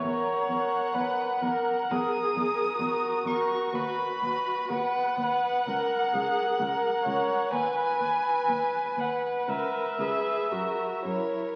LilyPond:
<<
  \new Staff \with { instrumentName = "Violin" } { \time 4/4 \key fis \mixolydian \tempo 4 = 63 fis''2 dis'''4. cis'''8 | b''4 fis''2. | gis''4. fis''8 e''4. cis''8 | }
  \new Staff \with { instrumentName = "Viola" } { \time 4/4 \key fis \mixolydian cis''4 b'8 ais'8 gis'4 fis'4~ | fis'4 b'4 ais'8 gis'8 ais'8 cis''8 | b'2 ais'8 gis'8 fis'8 e'8 | }
  \new Staff \with { instrumentName = "Violin" } { \time 4/4 \key fis \mixolydian ais'8 ais'8 ais'8 ais'8 ais'8 ais'8 ais'8 ais'8 | b'8 b'8 b'8 b'8 ais'8 ais'8 ais'8 ais'8 | b'8 b'8 b'8 b'8 b'8 b'8 ais'8 ais'8 | }
  \new Staff \with { instrumentName = "Cello" } { \clef bass \time 4/4 \key fis \mixolydian e,8 e,8 e,8 e,8 e,8 e,8 e,8 e,8 | dis,8 dis,8 dis,8 dis,8 cis,8 cis,8 cis,8 cis,8 | dis,8 dis,8 dis,8 dis,8 cis,8 cis,8 fis,8 fis,8 | }
>>